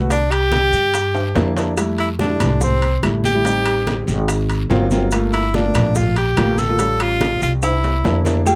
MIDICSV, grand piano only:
0, 0, Header, 1, 2, 480
1, 0, Start_track
1, 0, Tempo, 417827
1, 126, Time_signature, 4, 2, 24, 8
1, 9827, End_track
2, 0, Start_track
2, 0, Title_t, "Grand piano"
2, 0, Program_c, 0, 0
2, 0, Note_on_c, 0, 57, 77
2, 0, Note_on_c, 0, 59, 74
2, 1, Note_on_c, 0, 66, 86
2, 118, Note_off_c, 0, 57, 0
2, 120, Note_off_c, 0, 59, 0
2, 124, Note_off_c, 0, 66, 0
2, 1549, Note_on_c, 0, 58, 110
2, 1560, Note_on_c, 0, 62, 90
2, 1565, Note_on_c, 0, 64, 113
2, 1726, Note_off_c, 0, 58, 0
2, 1732, Note_off_c, 0, 62, 0
2, 1734, Note_off_c, 0, 64, 0
2, 1797, Note_on_c, 0, 62, 91
2, 1798, Note_on_c, 0, 58, 88
2, 1807, Note_on_c, 0, 64, 102
2, 1971, Note_off_c, 0, 58, 0
2, 1971, Note_off_c, 0, 62, 0
2, 1975, Note_off_c, 0, 64, 0
2, 2034, Note_on_c, 0, 55, 83
2, 2038, Note_on_c, 0, 57, 78
2, 2044, Note_on_c, 0, 64, 95
2, 2377, Note_off_c, 0, 55, 0
2, 2379, Note_off_c, 0, 57, 0
2, 2382, Note_off_c, 0, 64, 0
2, 2514, Note_on_c, 0, 55, 77
2, 2522, Note_on_c, 0, 57, 70
2, 2524, Note_on_c, 0, 62, 84
2, 2605, Note_off_c, 0, 55, 0
2, 2609, Note_off_c, 0, 57, 0
2, 2610, Note_off_c, 0, 62, 0
2, 2639, Note_on_c, 0, 55, 64
2, 2644, Note_on_c, 0, 57, 61
2, 2652, Note_on_c, 0, 64, 71
2, 3232, Note_off_c, 0, 55, 0
2, 3234, Note_off_c, 0, 57, 0
2, 3238, Note_off_c, 0, 64, 0
2, 3481, Note_on_c, 0, 55, 84
2, 3489, Note_on_c, 0, 57, 75
2, 3492, Note_on_c, 0, 64, 95
2, 3737, Note_off_c, 0, 55, 0
2, 3740, Note_off_c, 0, 57, 0
2, 3742, Note_off_c, 0, 64, 0
2, 3843, Note_on_c, 0, 55, 80
2, 3849, Note_on_c, 0, 57, 75
2, 3857, Note_on_c, 0, 64, 91
2, 3943, Note_off_c, 0, 55, 0
2, 3960, Note_on_c, 0, 55, 78
2, 3967, Note_on_c, 0, 60, 70
2, 3969, Note_off_c, 0, 57, 0
2, 3972, Note_off_c, 0, 64, 0
2, 3973, Note_on_c, 0, 63, 84
2, 4732, Note_off_c, 0, 55, 0
2, 4735, Note_off_c, 0, 60, 0
2, 4738, Note_off_c, 0, 63, 0
2, 5394, Note_on_c, 0, 54, 111
2, 5399, Note_on_c, 0, 58, 101
2, 5403, Note_on_c, 0, 60, 104
2, 5404, Note_on_c, 0, 65, 124
2, 5569, Note_off_c, 0, 54, 0
2, 5571, Note_off_c, 0, 58, 0
2, 5574, Note_off_c, 0, 60, 0
2, 5574, Note_off_c, 0, 65, 0
2, 5641, Note_on_c, 0, 54, 99
2, 5643, Note_on_c, 0, 58, 90
2, 5644, Note_on_c, 0, 60, 90
2, 5649, Note_on_c, 0, 65, 110
2, 5812, Note_off_c, 0, 54, 0
2, 5813, Note_off_c, 0, 58, 0
2, 5814, Note_off_c, 0, 60, 0
2, 5816, Note_off_c, 0, 65, 0
2, 5884, Note_on_c, 0, 57, 96
2, 5889, Note_on_c, 0, 58, 79
2, 5894, Note_on_c, 0, 65, 101
2, 6222, Note_off_c, 0, 57, 0
2, 6225, Note_off_c, 0, 58, 0
2, 6227, Note_off_c, 0, 65, 0
2, 6358, Note_on_c, 0, 57, 74
2, 6360, Note_on_c, 0, 58, 70
2, 6369, Note_on_c, 0, 65, 92
2, 6447, Note_off_c, 0, 57, 0
2, 6448, Note_off_c, 0, 58, 0
2, 6452, Note_off_c, 0, 65, 0
2, 6483, Note_on_c, 0, 57, 66
2, 6489, Note_on_c, 0, 58, 65
2, 6492, Note_on_c, 0, 65, 76
2, 7073, Note_off_c, 0, 57, 0
2, 7076, Note_off_c, 0, 58, 0
2, 7078, Note_off_c, 0, 65, 0
2, 7312, Note_on_c, 0, 57, 83
2, 7318, Note_on_c, 0, 58, 84
2, 7327, Note_on_c, 0, 65, 91
2, 7572, Note_off_c, 0, 57, 0
2, 7575, Note_off_c, 0, 58, 0
2, 7579, Note_off_c, 0, 65, 0
2, 7683, Note_on_c, 0, 57, 81
2, 7687, Note_on_c, 0, 58, 75
2, 7690, Note_on_c, 0, 65, 95
2, 7789, Note_off_c, 0, 65, 0
2, 7797, Note_on_c, 0, 55, 75
2, 7803, Note_on_c, 0, 61, 74
2, 7806, Note_off_c, 0, 57, 0
2, 7806, Note_on_c, 0, 65, 78
2, 7807, Note_off_c, 0, 58, 0
2, 8570, Note_off_c, 0, 55, 0
2, 8573, Note_off_c, 0, 61, 0
2, 8575, Note_off_c, 0, 65, 0
2, 9238, Note_on_c, 0, 58, 89
2, 9243, Note_on_c, 0, 62, 79
2, 9246, Note_on_c, 0, 64, 97
2, 9410, Note_off_c, 0, 58, 0
2, 9413, Note_off_c, 0, 62, 0
2, 9414, Note_off_c, 0, 64, 0
2, 9471, Note_on_c, 0, 58, 99
2, 9479, Note_on_c, 0, 62, 83
2, 9483, Note_on_c, 0, 64, 106
2, 9647, Note_off_c, 0, 58, 0
2, 9651, Note_off_c, 0, 62, 0
2, 9652, Note_off_c, 0, 64, 0
2, 9712, Note_on_c, 0, 57, 103
2, 9719, Note_on_c, 0, 65, 87
2, 9724, Note_on_c, 0, 67, 110
2, 9827, Note_off_c, 0, 57, 0
2, 9827, Note_off_c, 0, 65, 0
2, 9827, Note_off_c, 0, 67, 0
2, 9827, End_track
0, 0, End_of_file